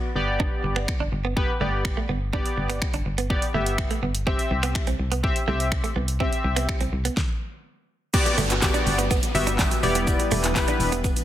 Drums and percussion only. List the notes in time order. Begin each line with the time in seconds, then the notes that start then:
0.40 kick
0.76 finger snap
0.88 finger snap, kick
1.37 kick
1.85 finger snap, kick
2.33 kick
2.46 closed hi-hat
2.70 finger snap, closed hi-hat
2.82 finger snap, kick
2.94 closed hi-hat
3.18 closed hi-hat
3.30 kick
3.42 closed hi-hat
3.66 closed hi-hat
3.78 finger snap, kick
3.91 closed hi-hat
4.15 closed hi-hat
4.27 kick
4.39 closed hi-hat
4.63 finger snap, closed hi-hat
4.75 finger snap, kick
4.87 closed hi-hat
5.12 closed hi-hat
5.24 kick
5.36 closed hi-hat
5.60 closed hi-hat
5.72 finger snap, kick
5.84 closed hi-hat
6.08 closed hi-hat
6.20 kick
6.33 closed hi-hat
6.56 finger snap, closed hi-hat
6.69 finger snap, kick
6.80 closed hi-hat
7.05 closed hi-hat
7.17 kick, snare
8.14 kick, crash, tambourine, shaker
8.26 closed hi-hat, shaker
8.38 open hi-hat, tambourine, shaker
8.50 clap, closed hi-hat, shaker
8.62 kick, snare, clap, tambourine, shaker
8.74 closed hi-hat, shaker
8.86 open hi-hat, tambourine, shaker
8.99 closed hi-hat, shaker
9.11 kick, tambourine, shaker
9.23 closed hi-hat, tambourine, shaker
9.35 open hi-hat, tambourine, shaker
9.47 closed hi-hat, tambourine, shaker
9.59 kick, snare, clap, tambourine, shaker
9.71 closed hi-hat, tambourine, shaker
9.83 open hi-hat, shaker
9.95 closed hi-hat, shaker
10.07 kick, tambourine, shaker
10.20 closed hi-hat, shaker
10.31 open hi-hat, tambourine, shaker
10.43 clap, closed hi-hat, tambourine, shaker
10.56 kick, snare, clap, tambourine, shaker
10.68 closed hi-hat, shaker
10.80 open hi-hat, tambourine, shaker
10.92 closed hi-hat, shaker
11.04 kick, tambourine, shaker
11.16 closed hi-hat, tambourine, shaker